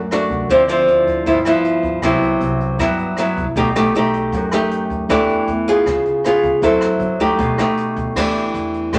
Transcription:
0.00 0.48 F#2 medium
0.11 0.48 A3 soft
0.11 0.49 D4 medium
0.11 0.49 F#4 medium
0.11 cross-stick medium
0.11 closed hi-hat soft
0.30 0.48 C2 medium
0.30 kick medium
0.30 closed hi-hat soft
0.49 0.85 D2 medium
0.49 1.25 D3 medium
0.49 0.61 F3 medium
0.49 0.61 C4 medium
0.49 0.62 E4 medium
0.49 kick medium
0.49 closed hi-hat soft
0.68 1.25 F3 medium
0.68 1.25 C4 medium
0.68 1.26 E4 medium
0.68 cross-stick medium
0.68 closed hi-hat soft
0.87 1.23 D2 medium
0.87 closed hi-hat soft
1.07 kick medium
1.07 closed hi-hat soft
1.26 1.44 G1 medium
1.26 2.01 G2 medium
1.26 1.38 F3 soft
1.26 1.38 B3 soft
1.26 1.38 E4 medium
1.26 kick medium
1.26 closed hi-hat soft
1.45 2.00 F3 medium
1.45 2.00 B3 medium
1.45 2.01 E4 medium
1.45 cross-stick medium
1.45 closed hi-hat soft
1.64 closed hi-hat soft
1.83 2.01 G2 medium
1.83 kick soft
1.83 closed hi-hat soft
2.02 2.38 C2 loud
2.02 2.78 C3 medium
2.02 2.77 F#3 medium
2.02 2.77 B3 medium
2.02 2.77 E4 medium
2.02 kick medium
2.02 cross-stick medium
2.02 closed hi-hat soft
2.22 closed hi-hat soft
2.40 2.77 C2 medium
2.40 closed hi-hat soft
2.60 closed hi-hat soft
2.79 2.97 G2 medium
2.79 3.54 G2 medium
2.79 3.15 F#3 medium
2.79 3.15 B3 medium
2.79 3.15 E4 medium
2.79 kick medium
2.79 cross-stick medium
2.79 closed hi-hat soft
2.98 closed hi-hat soft
3.17 3.44 F#3 medium
3.17 3.44 B3 medium
3.17 3.44 E4 medium
3.17 cross-stick medium
3.17 closed hi-hat soft
3.37 3.55 C2 medium
3.37 kick soft
3.37 closed hi-hat soft
3.56 3.92 B1 medium
3.56 4.31 B2 medium
3.56 3.68 A3 medium
3.56 3.68 D#4 medium
3.56 3.68 G4 medium
3.56 kick medium
3.56 closed hi-hat soft
3.75 3.92 A3 medium
3.75 3.92 D#4 medium
3.75 3.92 G4 medium
3.75 cross-stick medium
3.94 4.30 B1 medium
3.94 4.50 A3 medium
3.94 4.50 D#4 medium
3.94 4.50 G4 medium
3.94 closed hi-hat soft
4.14 closed hi-hat soft
4.32 4.51 F#2 medium
4.32 5.09 F#2 medium
4.32 kick medium
4.32 closed hi-hat soft
4.52 5.07 A3 medium
4.52 5.07 D#4 medium
4.52 5.08 G4 medium
4.52 cross-stick medium
4.52 closed hi-hat soft
4.71 closed hi-hat soft
4.90 5.08 D#2 medium
4.90 kick soft
4.90 closed hi-hat soft
5.09 5.45 E2 loud
5.09 5.85 E3 medium
5.09 5.48 A3 medium
5.09 5.48 D4 medium
5.09 5.49 G4 medium
5.09 kick medium
5.09 cross-stick medium
5.09 closed hi-hat medium
5.29 closed hi-hat soft
5.47 5.83 E2 medium
5.47 closed hi-hat soft
5.68 6.22 B3 medium
5.68 6.22 F4 medium
5.68 6.23 G#4 medium
5.68 closed hi-hat soft
5.86 6.04 C#2 loud
5.86 6.62 C#3 soft
5.86 kick medium
5.86 cross-stick medium
5.86 closed hi-hat soft
6.05 closed hi-hat soft
6.24 6.61 B3 medium
6.24 6.61 F4 medium
6.24 6.61 G#4 medium
6.24 cross-stick medium
6.24 closed hi-hat soft
6.43 6.62 C#2 medium
6.43 kick soft
6.43 closed hi-hat soft
6.62 6.98 F#2 loud
6.62 7.38 F#3 medium
6.62 7.18 C4 medium
6.62 7.18 E4 medium
6.62 7.18 A4 medium
6.62 kick medium
6.62 closed hi-hat soft
6.81 cross-stick medium
6.81 closed hi-hat soft
7.00 7.36 F#2 loud
7.00 closed hi-hat soft
7.20 7.56 A3 medium
7.20 7.56 D#4 medium
7.20 7.56 G4 medium
7.20 kick medium
7.20 closed hi-hat soft
7.39 7.57 B1 loud
7.39 8.14 B2 medium
7.39 kick medium
7.39 closed hi-hat soft
7.58 8.14 A3 medium
7.58 8.14 D#4 medium
7.58 8.14 G4 medium
7.58 cross-stick medium
7.58 closed hi-hat soft
7.77 closed hi-hat soft
7.96 8.15 B1 medium
7.96 kick soft
7.96 closed hi-hat soft
8.16 8.52 E2 medium
8.16 8.92 E3 medium
8.16 8.91 A3 medium
8.16 8.91 D4 soft
8.16 8.91 G4 medium
8.16 kick medium
8.16 cross-stick medium
8.16 crash medium
8.35 closed hi-hat soft
8.54 8.90 E2 medium
8.54 closed hi-hat soft
8.74 closed hi-hat soft
8.93 8.99 B1 loud
8.93 8.99 B2 medium
8.93 8.99 A3 soft
8.93 8.99 D4 soft
8.93 8.99 G4 medium
8.93 kick medium
8.93 cross-stick medium
8.93 closed hi-hat soft

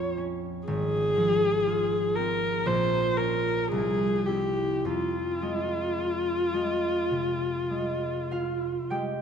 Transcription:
0.00 0.56 A#1 soft
0.00 0.71 F2 soft
0.00 1.16 F3 soft
0.00 0.16 C#4 soft
0.00 1.65 F4 soft
0.00 0.17 C#5 medium
0.17 0.71 C#4 soft
0.68 2.70 G#1 soft
0.68 2.17 G#4 medium
1.17 3.75 F3 soft
1.67 3.17 F4 soft
2.15 2.70 C4 soft
2.15 2.68 A#4 medium
2.66 3.75 A#1 soft
2.66 3.18 C5 medium
3.17 3.76 C#4 soft
3.17 3.76 F4 soft
3.17 3.71 A#4 medium
3.71 4.89 C2 soft
3.71 4.27 G#4 medium
4.26 8.18 C4 soft
4.26 4.90 E4 soft
4.26 4.87 G4 soft
4.85 8.75 F2 soft
4.85 8.91 F4 soft
5.42 6.52 G#3 soft
5.98 8.31 F4 soft
6.54 7.69 G#3 soft
7.11 9.22 C3 soft
7.70 8.90 G#3 soft
8.31 9.22 F4 soft
8.31 9.22 F5 soft
8.90 9.22 G#3 soft
8.90 9.22 G4 soft
8.90 9.22 G5 soft

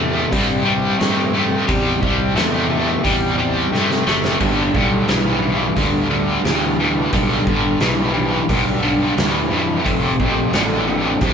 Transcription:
0.00 0.25 E2 medium
0.00 0.28 C3 medium
0.00 0.29 A3 medium
0.00 1.65 D#4 medium
0.00 1.65 E4 medium
0.00 1.66 G4 medium
0.00 1.65 A#5 medium
0.31 0.93 G2 medium
0.31 0.62 C3 medium
0.31 0.62 G3 medium
0.31 kick medium
0.31 open hi-hat medium
0.65 0.96 C3 medium
0.65 0.96 G3 medium
0.99 1.61 G2 medium
0.99 1.30 C3 medium
0.99 1.30 A3 medium
0.99 snare medium
0.99 open hi-hat soft
1.33 1.64 C3 medium
1.33 1.64 A3 medium
1.67 1.99 E2 medium
1.67 1.98 C3 medium
1.67 1.98 G3 loud
1.67 4.37 D#4 medium
1.67 4.37 E4 medium
1.67 4.37 G4 medium
1.67 4.37 A#5 medium
1.67 kick loud
1.67 open hi-hat soft
2.01 2.33 C2 medium
2.01 2.32 C3 medium
2.01 2.32 G3 medium
2.01 kick medium
2.35 2.97 E2 medium
2.35 2.66 C3 medium
2.35 2.66 A3 medium
2.35 snare loud
2.35 open hi-hat medium
2.69 3.00 C3 medium
2.69 3.00 A3 medium
3.04 3.65 E2 medium
3.04 3.34 C3 medium
3.04 3.35 G3 medium
3.04 kick medium
3.04 open hi-hat medium
3.38 3.68 C3 medium
3.38 3.69 G3 medium
3.71 4.02 G2 medium
3.71 4.02 C3 medium
3.71 4.02 A3 medium
3.71 snare soft
3.91 snare medium
4.07 4.37 F#1 medium
4.07 4.37 C3 medium
4.07 4.37 A3 medium
4.07 snare medium
4.24 snare medium
4.40 4.71 G1 medium
4.40 4.70 G2 medium
4.40 4.71 D3 medium
4.40 4.63 C4 medium
4.40 4.63 D#4 medium
4.40 4.63 F#4 medium
4.40 4.63 B4 medium
4.40 kick medium
4.40 open hi-hat soft
4.40 crash medium
4.62 7.10 B3 medium
4.62 7.09 D4 medium
4.62 7.09 A#4 medium
4.62 7.09 F5 medium
4.74 5.05 B1 medium
4.74 5.04 G2 medium
4.74 5.05 D3 medium
4.74 kick medium
5.08 5.70 B1 medium
5.08 5.38 G2 medium
5.08 5.39 E3 medium
5.08 snare loud
5.08 open hi-hat soft
5.41 5.72 G2 medium
5.41 5.73 E3 medium
5.76 6.38 D2 medium
5.76 6.06 G2 medium
5.76 6.07 D3 medium
5.76 kick medium
5.76 open hi-hat medium
6.10 6.41 G2 medium
6.10 6.41 D3 medium
6.44 7.05 D2 medium
6.44 6.75 G2 medium
6.44 6.75 E3 medium
6.44 snare medium
6.44 open hi-hat soft
6.79 7.09 G2 medium
6.79 7.09 E3 medium
7.13 7.43 B1 medium
7.13 7.43 G2 medium
7.13 7.44 D3 loud
7.13 9.84 D4 medium
7.13 9.84 A#4 medium
7.13 9.84 B4 medium
7.13 9.84 F5 medium
7.13 kick medium
7.13 open hi-hat soft
7.47 7.77 G1 medium
7.47 7.77 G2 medium
7.47 7.78 D3 medium
7.47 kick medium
7.80 8.42 B1 medium
7.80 8.11 G2 medium
7.80 8.11 E3 medium
7.80 snare loud
7.80 open hi-hat medium
8.14 8.45 G2 medium
8.14 8.45 E3 medium
8.48 9.10 B1 medium
8.48 8.79 G2 medium
8.48 8.80 D3 medium
8.48 kick medium
8.48 open hi-hat medium
8.82 9.13 G2 medium
8.82 9.13 D3 medium
9.17 9.48 D2 medium
9.17 9.47 G2 medium
9.17 9.48 E3 medium
9.17 snare loud
9.17 open hi-hat medium
9.50 9.82 F2 medium
9.50 9.81 G2 medium
9.50 9.82 E3 medium
9.84 10.16 F1 medium
9.84 10.15 F2 medium
9.84 10.16 C3 medium
9.84 10.09 A#3 medium
9.84 10.09 C#4 medium
9.84 10.09 E4 medium
9.84 10.09 A4 medium
9.84 kick medium
9.84 open hi-hat soft
10.09 11.33 A3 medium
10.09 11.33 C4 medium
10.09 11.33 G#4 medium
10.09 11.33 D#5 medium
10.19 10.50 A#1 medium
10.19 10.50 F2 medium
10.19 10.50 C3 medium
10.19 kick medium
10.53 11.14 A1 medium
10.53 10.84 F2 medium
10.53 10.84 D3 medium
10.53 snare loud
10.53 open hi-hat medium
10.87 11.18 F2 medium
10.87 11.18 D3 medium
11.21 11.33 C2 medium
11.21 11.33 F2 medium
11.21 11.33 C3 medium
11.21 kick medium
11.21 open hi-hat medium

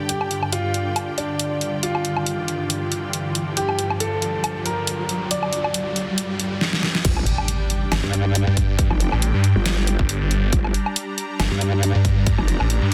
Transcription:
0.00 6.57 G2 medium
0.00 6.57 D3 medium
0.00 6.57 D4 medium
0.00 6.61 G4 medium
0.00 6.61 D5 medium
0.00 6.61 G5 medium
0.00 riser medium
0.09 6.57 F4 medium
0.09 0.35 G4 loud
0.09 closed hi-hat medium
0.21 low woodblock medium
0.31 closed hi-hat soft
0.43 low woodblock medium
0.53 1.10 F4 loud
0.53 closed hi-hat medium
0.74 closed hi-hat soft
0.96 closed hi-hat medium
0.96 low woodblock medium
1.18 1.75 D4 medium
1.18 closed hi-hat medium
1.39 closed hi-hat medium
1.61 closed hi-hat medium
1.83 3.49 F4 medium
1.83 closed hi-hat medium
1.95 low woodblock medium
2.05 closed hi-hat soft
2.17 low woodblock medium
2.26 closed hi-hat medium
2.48 closed hi-hat soft
2.70 closed hi-hat medium
2.92 closed hi-hat medium
3.13 closed hi-hat medium
3.35 closed hi-hat soft
3.57 3.83 G4 loud
3.57 closed hi-hat medium
3.69 low woodblock medium
3.79 closed hi-hat medium
3.90 low woodblock medium
4.00 4.58 A4 loud
4.00 closed hi-hat medium
4.22 closed hi-hat medium
4.44 closed hi-hat medium
4.44 low woodblock medium
4.66 5.23 A#4 medium
4.66 closed hi-hat medium
4.87 closed hi-hat medium
5.09 closed hi-hat medium
5.31 6.61 D5 loud
5.31 closed hi-hat medium
5.43 low woodblock medium
5.53 closed hi-hat medium
5.64 low woodblock medium
5.74 closed hi-hat medium
5.96 closed hi-hat medium
6.18 closed hi-hat medium
6.40 closed hi-hat medium
6.61 snare medium
6.73 snare medium
6.83 snare medium
6.95 snare medium
7.05 7.25 G1 medium
7.05 12.94 G3 medium
7.05 12.94 D4 medium
7.05 12.94 G4 medium
7.05 12.94 D5 medium
7.05 10.51 G5 medium
7.05 kick loud
7.05 closed hi-hat medium
7.05 crash loud
7.05 impact medium
7.17 low woodblock medium
7.26 closed hi-hat medium
7.38 low woodblock medium
7.48 closed hi-hat medium
7.70 closed hi-hat medium
7.92 8.02 G1 loud
7.92 snare loud
7.92 closed hi-hat medium
7.92 low woodblock medium
8.04 8.45 G2 loud
8.13 closed hi-hat medium
8.35 closed hi-hat medium
8.47 8.89 G2 loud
8.57 kick medium
8.57 closed hi-hat medium
8.79 kick loud
8.79 closed hi-hat medium
8.90 9.10 F1 loud
8.90 low woodblock medium
9.00 closed hi-hat medium
9.12 9.32 A1 loud
9.12 low woodblock medium
9.22 closed hi-hat medium
9.34 9.54 G2 medium
9.44 closed hi-hat medium
9.56 9.97 G1 loud
9.66 snare loud
9.66 closed hi-hat medium
9.87 closed hi-hat medium
9.99 10.19 G1 loud
9.99 kick medium
10.09 closed hi-hat medium
10.21 10.51 G1 loud
10.31 closed hi-hat medium
10.53 10.73 G1 medium
10.53 12.94 A#5 medium
10.53 kick loud
10.53 closed hi-hat medium
10.64 low woodblock medium
10.74 closed hi-hat medium
10.86 low woodblock medium
10.96 closed hi-hat medium
11.18 closed hi-hat medium
11.40 11.49 G1 loud
11.40 snare loud
11.40 closed hi-hat medium
11.40 low woodblock medium
11.51 11.93 G2 loud
11.61 closed hi-hat medium
11.83 closed hi-hat medium
11.95 12.36 G2 loud
12.05 kick medium
12.05 closed hi-hat medium
12.27 kick loud
12.27 closed hi-hat medium
12.38 12.58 F1 loud
12.38 low woodblock medium
12.48 closed hi-hat medium
12.60 12.80 A1 loud
12.60 low woodblock medium
12.70 closed hi-hat medium
12.82 12.94 G2 medium

